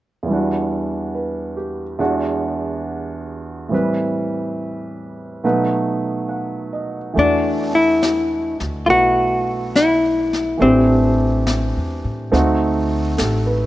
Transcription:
0.23 1.97 E2 soft
0.23 1.98 E3 soft
0.29 2.00 G3 soft
0.29 1.98 D4 soft
0.33 1.99 F#4 soft
1.14 1.82 B4 soft
1.57 2.17 G4 soft
1.99 3.72 E2 soft
1.99 3.69 E3 soft
1.99 3.72 G#3 soft
1.99 3.72 D4 soft
1.99 3.72 F#4 soft
3.69 5.43 A2 soft
3.69 5.43 E3 soft
3.69 5.44 G3 soft
3.69 5.44 C4 soft
3.74 5.44 B4 soft
5.44 7.16 B2 soft
5.44 7.17 F#3 soft
5.44 7.14 A3 soft
5.44 7.17 D#4 soft
5.44 7.17 B4 soft
6.29 6.97 F#5 soft
6.73 7.34 D#5 soft
7.14 8.57 E2 medium
7.14 10.56 E3 soft
7.14 8.86 A3 soft
7.14 10.59 D4 soft
7.14 brush sweep soft
7.18 7.75 D4 medium
7.18 10.61 F#4 soft
7.75 8.57 E4 medium
8.03 snare soft
8.03 hi-hat pedal soft
8.60 8.87 D2 medium
8.60 snare soft
8.86 10.56 B1 medium
8.86 10.58 A3 soft
8.86 10.61 B3 soft
8.86 10.61 E4 soft
8.86 8.90 F4 medium
8.86 9.78 F#4 medium
8.86 brush sweep soft
9.75 10.57 E4 medium
9.75 snare soft
9.75 hi-hat pedal soft
10.33 snare soft
10.58 11.71 A1 medium
10.58 12.31 E3 soft
10.58 12.30 A3 soft
10.58 12.32 D4 soft
10.58 brush sweep soft
10.62 13.66 C4 medium
10.62 12.33 G4 soft
11.47 snare soft
11.47 hi-hat pedal soft
11.77 12.03 E2 soft
12.05 12.31 A2 medium
12.32 13.15 D2 medium
12.32 13.66 A3 soft
12.32 13.66 C4 soft
12.32 13.66 D#4 soft
12.32 13.66 F#4 medium
12.32 brush sweep soft
12.32 snare soft
13.18 13.66 A1 medium
13.18 13.66 A4 soft
13.18 snare soft
13.18 hi-hat pedal soft
13.46 13.66 B4 soft

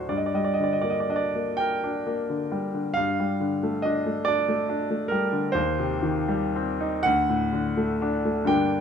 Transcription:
0.00 0.13 D2 soft
0.00 0.12 A2 soft
0.00 0.12 F#3 soft
0.00 0.12 A3 soft
0.00 0.13 D4 soft
0.00 0.12 F#4 soft
0.00 0.12 C5 medium
0.09 2.93 G2 soft
0.09 0.18 D5 medium
0.17 0.27 D#5 soft
0.26 0.36 D5 soft
0.34 0.75 G3 soft
0.34 0.45 D#5 medium
0.44 0.54 D5 soft
0.54 0.63 D#5 medium
0.60 1.01 D3 soft
0.60 0.73 D5 soft
0.73 0.82 D#5 medium
0.81 1.25 A#3 soft
0.81 0.91 D5 medium
0.90 1.00 D#5 medium
1.00 1.10 D5 medium
1.10 1.51 D4 soft
1.10 1.20 D#5 medium
1.16 1.59 D5 medium
1.35 1.75 A#3 soft
1.57 1.98 A#4 soft
1.57 2.96 G5 medium
1.84 2.21 D4 soft
2.07 2.43 A#3 soft
2.30 2.66 D3 soft
2.52 2.88 G3 soft
2.74 2.97 D3 soft
2.94 5.52 G2 medium
2.94 3.83 F5 medium
3.20 3.55 G3 soft
3.40 3.76 D3 soft
3.63 3.98 A3 soft
3.82 4.19 D4 soft
3.82 4.27 D#5 medium
4.06 4.40 A3 soft
4.25 4.62 D4 soft
4.25 5.11 D5 medium
4.48 4.83 A3 medium
4.69 5.04 D4 soft
4.91 5.25 A3 soft
5.08 5.47 G3 soft
5.08 5.55 A#4 medium
5.32 5.56 D3 soft
5.52 7.00 D#2 medium
5.52 7.03 C5 medium
5.79 6.19 C3 soft
6.02 6.44 D#3 medium
6.28 6.70 G3 medium
6.56 6.96 C4 medium
6.81 7.05 D#4 medium
7.03 8.45 D2 medium
7.03 8.48 F#5 loud
7.29 7.67 A2 soft
7.53 7.91 D3 medium
7.77 8.15 A3 soft
8.02 8.40 D4 medium
8.25 8.50 A3 soft
8.44 8.81 G2 medium
8.44 8.81 D3 soft
8.44 8.81 A#3 soft
8.44 8.81 G5 medium
8.49 8.81 D4 soft

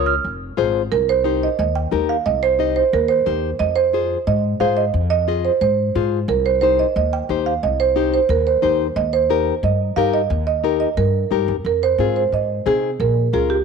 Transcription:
0.00 0.17 C#2 medium
0.00 0.14 F4 medium
0.00 0.14 A#4 medium
0.00 0.14 C#5 medium
0.06 0.70 F6 medium
0.24 0.51 F1 medium
0.57 0.85 G#1 medium
0.57 0.81 F4 medium
0.57 0.81 G#4 medium
0.57 0.81 C5 medium
0.92 1.46 C2 medium
0.92 0.99 A#4 medium
1.09 1.40 C5 loud
1.24 1.48 D#4 medium
1.24 1.49 G4 medium
1.24 1.49 C5 medium
1.43 1.51 D#5 medium
1.59 1.86 D#2 loud
1.59 1.67 D#5 medium
1.76 2.10 G5 medium
1.91 2.19 D#2 medium
1.91 2.15 D#4 medium
1.91 2.16 G4 medium
1.91 2.16 A#4 medium
2.09 2.27 F5 loud
2.26 2.80 C2 medium
2.26 2.33 D#5 loud
2.43 2.75 C5 loud
2.59 2.83 D#4 medium
2.59 2.83 G4 medium
2.59 2.83 D#5 medium
2.76 2.92 C5 medium
2.93 3.20 D#2 loud
2.93 3.11 A#4 medium
3.08 3.40 C5 medium
3.26 3.53 D#2 medium
3.26 3.50 D#4 medium
3.26 3.50 G4 medium
3.26 3.50 C5 medium
3.59 4.14 F2 loud
3.59 3.67 D#5 loud
3.76 4.23 C5 loud
3.93 4.17 F4 medium
3.93 4.17 G#4 medium
3.93 4.18 C5 medium
4.27 4.54 G#2 loud
4.27 4.62 D#5 loud
4.60 4.87 G#2 medium
4.60 4.84 F4 medium
4.60 4.84 G#4 medium
4.60 4.84 C5 medium
4.60 4.68 F5 loud
4.77 5.08 D#5 medium
4.94 5.48 F2 loud
5.10 5.45 D#5 loud
5.28 5.51 F4 medium
5.28 5.51 G#4 medium
5.28 5.52 D#5 medium
5.45 5.52 C5 medium
5.61 5.88 G#2 loud
5.61 6.08 C5 medium
5.95 6.22 G#2 loud
5.95 6.19 F4 medium
5.95 6.19 G#4 medium
5.95 6.19 C5 medium
6.28 6.82 C2 loud
6.28 6.36 A#4 medium
6.46 6.60 C5 medium
6.61 6.86 D#4 medium
6.61 6.86 G4 medium
6.61 6.69 C5 medium
6.61 6.86 C5 medium
6.79 6.96 D#5 medium
6.96 7.23 D#2 medium
6.96 7.04 D#5 medium
7.13 7.47 G5 medium
7.29 7.56 D#2 medium
7.29 7.53 D#4 medium
7.29 7.53 G4 medium
7.29 7.53 C5 medium
7.46 7.62 F5 medium
7.63 8.17 C2 medium
7.63 7.79 D#5 medium
7.80 8.12 C5 loud
7.96 8.20 D#4 medium
7.96 8.20 G4 medium
7.96 8.20 C5 medium
8.14 8.21 C5 medium
8.29 8.56 D#2 loud
8.29 8.47 A#4 medium
8.47 8.78 C5 medium
8.62 8.90 D#2 medium
8.62 8.86 D#4 medium
8.62 8.86 G4 medium
8.62 8.87 C5 medium
8.96 9.50 D#2 loud
8.96 9.12 D#5 loud
9.13 9.60 C5 medium
9.30 9.54 D#4 medium
9.30 9.54 G4 medium
9.30 9.54 A#4 medium
9.63 9.90 G2 loud
9.63 9.95 D#5 loud
9.96 10.24 G2 medium
9.96 10.21 D#4 medium
9.96 10.21 G4 medium
9.96 10.21 A#4 loud
9.96 10.04 F5 loud
10.14 10.46 D#5 loud
10.30 10.84 D#2 loud
10.47 10.79 D#5 medium
10.64 10.88 D#4 medium
10.64 10.88 G4 medium
10.64 10.88 A#4 medium
10.80 10.88 D#5 medium
10.97 11.25 G2 loud
10.97 11.45 A#4 medium
11.31 11.47 G2 medium
11.31 11.55 D#4 medium
11.31 11.55 G4 medium
11.31 11.55 A#4 medium
11.48 11.64 F2 medium
11.65 11.92 F2 medium
11.65 11.74 A#4 medium
11.83 12.15 C5 medium
11.98 12.26 G#2 loud
11.98 12.23 C4 medium
11.98 12.23 F4 medium
11.98 12.23 G#4 medium
12.16 12.33 C5 medium
12.32 12.59 G#2 medium
12.32 12.68 D#5 medium
12.66 12.93 C3 loud
12.66 12.90 C4 medium
12.66 12.90 D#4 medium
12.66 12.90 G#4 medium
12.66 13.02 G#4 medium
13.00 13.27 A#1 medium
13.00 13.35 A#4 medium
13.33 13.60 C#2 medium
13.33 13.57 C#4 medium
13.33 13.57 F4 medium
13.33 13.51 G#4 medium
13.33 13.57 A#4 medium
13.50 13.64 G4 medium

